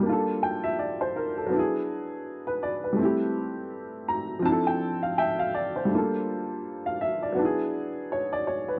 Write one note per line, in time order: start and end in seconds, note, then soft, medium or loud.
0.00 1.46 G3 medium
0.00 1.47 A#3 medium
0.06 1.49 D4 medium
0.06 1.51 F4 medium
0.12 0.45 A4 medium
0.43 0.63 G5 medium
0.64 0.78 E5 medium
0.79 0.99 D5 medium
1.01 1.15 C5 medium
1.16 1.36 A#4 medium
1.38 1.72 A4 soft
1.47 2.93 F#3 medium
1.47 2.94 B3 medium
1.53 2.96 D4 medium
1.53 2.97 E4 medium
1.59 2.99 G#4 medium
2.47 2.61 B4 medium
2.63 2.82 D5 medium
2.84 3.18 B4 medium
2.93 4.39 G3 medium
2.93 4.40 A3 medium
2.99 4.41 C4 medium
2.99 4.44 E4 medium
3.05 4.45 G4 medium
4.08 4.42 A#5 medium
4.39 5.85 F3 medium
4.39 5.87 C4 medium
4.45 5.88 D4 medium
4.45 5.90 E4 medium
4.45 4.65 A5 medium
4.52 5.92 A4 medium
4.67 5.00 G5 medium
5.03 5.17 F5 medium
5.18 5.52 E5 medium
5.18 5.38 G5 medium
5.39 5.54 F5 medium
5.54 5.88 D5 medium
5.76 6.10 C5 medium
5.85 7.31 G3 medium
5.85 5.97 A3 soft
5.91 7.36 A#3 medium
5.91 7.34 D4 medium
5.91 7.36 F4 medium
5.98 7.38 A4 medium
6.86 7.00 F5 medium
7.01 7.21 E5 medium
7.23 7.57 D5 medium
7.32 8.78 F#3 medium
7.32 8.79 B3 medium
7.39 8.79 D4 medium
7.39 8.79 E4 medium
7.45 8.79 G#4 medium
8.12 8.31 C#5 medium
8.32 8.47 D5 medium
8.47 8.67 C#5 medium
8.68 8.79 B4 medium